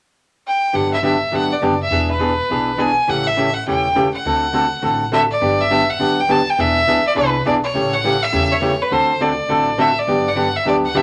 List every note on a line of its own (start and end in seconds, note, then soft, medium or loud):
0.47 0.77 G5 medium
0.73 1.22 G1 medium
0.73 0.94 D3 soft
0.73 0.94 F#3 medium
0.73 0.94 B3 soft
0.73 0.95 D4 soft
0.73 0.94 G4 soft
0.73 0.93 F#5 medium
0.93 1.03 E5 medium
1.02 1.14 D3 medium
1.02 1.15 F#3 medium
1.02 1.15 B3 medium
1.02 1.15 D4 medium
1.02 1.15 G4 medium
1.02 1.31 E5 medium
1.31 1.58 G1 medium
1.31 1.52 D3 soft
1.31 1.53 F#3 medium
1.31 1.53 B3 medium
1.31 1.53 D4 medium
1.31 1.53 G4 medium
1.31 1.36 E5 medium
1.35 1.54 F#5 medium
1.52 1.81 D5 medium
1.62 1.87 F#1 medium
1.62 1.73 D3 medium
1.62 1.73 F#3 medium
1.62 1.74 B3 medium
1.62 1.74 D4 medium
1.62 1.74 G4 medium
1.82 2.09 E5 medium
1.91 2.38 E1 medium
1.91 2.11 E3 soft
1.91 2.12 B3 medium
1.91 2.12 D4 medium
1.91 2.12 G#4 soft
2.11 2.81 B4 medium
2.20 2.31 E3 medium
2.20 2.32 B3 medium
2.20 2.32 D4 medium
2.20 2.32 G#4 medium
2.50 2.97 B1 medium
2.50 2.70 E3 medium
2.50 2.70 B3 medium
2.50 2.71 D4 medium
2.50 2.71 G#4 medium
2.77 2.90 E3 medium
2.77 2.90 B3 medium
2.77 2.90 D4 medium
2.77 2.90 G#4 medium
2.77 3.11 G#5 medium
3.08 3.55 A1 medium
3.08 3.28 C#3 soft
3.08 3.28 E3 medium
3.08 3.28 A3 medium
3.08 3.28 C#4 soft
3.08 3.29 G4 soft
3.08 3.28 F#5 loud
3.27 3.55 E5 medium
3.37 3.48 C#3 medium
3.37 3.49 E3 medium
3.37 3.49 A3 medium
3.37 3.49 C#4 medium
3.37 3.49 G4 medium
3.54 3.66 F#5 medium
3.67 4.14 E1 medium
3.67 3.87 C#3 soft
3.67 3.87 E3 medium
3.67 3.87 A3 medium
3.67 3.87 C#4 medium
3.67 3.87 G4 medium
3.67 4.11 G5 medium
3.95 4.07 C#3 medium
3.95 4.07 E3 medium
3.95 4.07 A3 medium
3.95 4.07 C#4 medium
3.95 4.07 G4 medium
4.14 5.09 F#5 medium
4.25 4.72 D2 medium
4.25 4.45 D3 soft
4.25 4.46 A3 medium
4.25 4.46 C4 soft
4.25 4.46 F#4 medium
4.25 4.46 A4 medium
4.53 4.65 D3 medium
4.53 4.65 A3 medium
4.53 4.65 C4 medium
4.53 4.65 F#4 medium
4.53 4.66 A4 medium
4.82 5.30 A1 medium
4.82 5.03 D3 medium
4.82 5.03 A3 medium
4.82 5.03 C4 soft
4.82 5.03 F#4 medium
4.82 5.03 A4 medium
5.12 5.23 D3 medium
5.12 5.23 A3 medium
5.12 5.24 C4 medium
5.12 5.24 F#4 medium
5.12 5.24 A4 medium
5.12 5.21 E5 loud
5.31 5.62 D5 medium
5.41 5.88 G1 loud
5.41 5.61 D3 medium
5.41 5.61 F#3 soft
5.41 5.62 B3 medium
5.41 5.62 D4 soft
5.41 5.62 G4 medium
5.61 5.91 E5 loud
5.70 5.82 D3 medium
5.70 5.82 F#3 medium
5.70 5.82 B3 medium
5.70 5.82 D4 medium
5.70 5.82 G4 medium
5.90 6.21 F#5 medium
5.99 6.47 D2 medium
5.99 6.20 D3 medium
5.99 6.20 F#3 medium
5.99 6.20 B3 medium
5.99 6.20 D4 medium
5.99 6.20 G4 medium
6.20 6.32 G5 medium
6.29 6.40 D3 medium
6.29 6.40 F#3 medium
6.29 6.40 B3 medium
6.29 6.41 D4 medium
6.29 6.41 G4 medium
6.29 6.51 A5 loud
6.50 6.62 G5 medium
6.58 6.82 E1 medium
6.58 6.78 E3 medium
6.58 6.78 B3 soft
6.58 6.79 D4 medium
6.58 6.79 G#4 medium
6.58 7.07 E5 loud
6.87 6.99 E3 medium
6.87 6.99 B3 medium
6.87 6.99 D4 medium
6.87 6.99 G#4 medium
7.07 7.16 D5 medium
7.15 7.42 C2 medium
7.15 7.36 E3 medium
7.15 7.36 B3 medium
7.15 7.36 D4 medium
7.15 7.37 G#4 medium
7.15 7.44 B4 medium
7.46 7.71 B1 medium
7.46 7.57 E3 medium
7.46 7.57 B3 medium
7.46 7.57 D4 medium
7.46 7.57 G#4 medium
7.46 7.54 D5 medium
7.63 7.95 C#5 loud
7.74 8.22 A1 medium
7.74 7.94 C#3 soft
7.74 7.94 E3 medium
7.74 7.95 A3 soft
7.74 7.95 C#4 soft
7.74 7.95 G4 medium
7.93 8.24 F#5 loud
8.04 8.15 C#3 medium
8.04 8.15 E3 medium
8.04 8.16 A3 medium
8.04 8.16 C#4 medium
8.04 8.16 G4 medium
8.22 8.54 E5 loud
8.32 8.80 E2 medium
8.32 8.53 C#3 medium
8.32 8.53 E3 medium
8.32 8.53 A3 medium
8.32 8.53 C#4 medium
8.32 8.53 G4 medium
8.52 8.83 C#5 loud
8.61 8.73 C#3 medium
8.61 8.73 E3 medium
8.61 8.73 A3 medium
8.61 8.73 C#4 medium
8.61 8.74 G4 medium
8.82 8.93 B4 medium
8.91 9.38 D2 medium
8.91 9.11 D3 medium
8.91 9.11 A3 soft
8.91 9.12 C4 soft
8.91 9.12 F#4 medium
8.91 9.12 A4 medium
8.91 9.23 C5 medium
9.20 9.32 D3 medium
9.20 9.32 A3 medium
9.20 9.32 C4 medium
9.20 9.32 F#4 medium
9.20 9.32 A4 medium
9.20 9.82 D5 medium
9.49 9.96 A1 medium
9.49 9.69 D3 medium
9.49 9.69 A3 soft
9.49 9.70 C4 medium
9.49 9.70 F#4 medium
9.49 9.70 A4 medium
9.78 9.90 D3 medium
9.78 9.90 A3 medium
9.78 9.90 C4 medium
9.78 9.90 F#4 medium
9.78 9.90 A4 medium
9.78 10.00 E5 medium
9.99 10.30 D5 medium
10.07 10.55 G1 medium
10.07 10.28 D3 medium
10.07 10.28 F#3 medium
10.07 10.28 B3 medium
10.07 10.28 D4 soft
10.07 10.28 G4 medium
10.28 10.57 F#5 loud
10.36 10.48 D3 medium
10.36 10.48 F#3 medium
10.36 10.48 B3 medium
10.36 10.48 D4 medium
10.36 10.48 G4 medium
10.56 10.67 E5 medium
10.65 11.02 D2 medium
10.65 10.86 D3 soft
10.65 10.86 F#3 medium
10.65 10.86 B3 medium
10.65 10.86 D4 medium
10.65 10.87 G4 medium
10.65 10.76 D5 medium
10.85 10.98 F#5 medium
10.94 11.02 D3 medium
10.94 11.02 F#3 medium
10.94 11.02 B3 medium
10.94 11.02 D4 medium
10.94 11.02 G4 medium
10.94 11.02 E5 medium